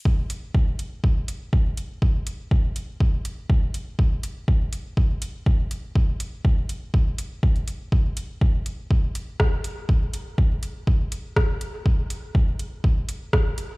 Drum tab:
HH |--x---x---x---x-|--x---x---x---x-|--x---x---x---x-|--x---x---x--xx-|
SD |----------------|----------------|----------------|----------------|
BD |o---o---o---o---|o---o---o---o---|o---o---o---o---|o---o---o---o---|

HH |--x---x---x---x-|--x---x---x---x-|--x---x---x---x-|
SD |------------r---|------------r---|------------r---|
BD |o---o---o---o---|o---o---o---o---|o---o---o---o---|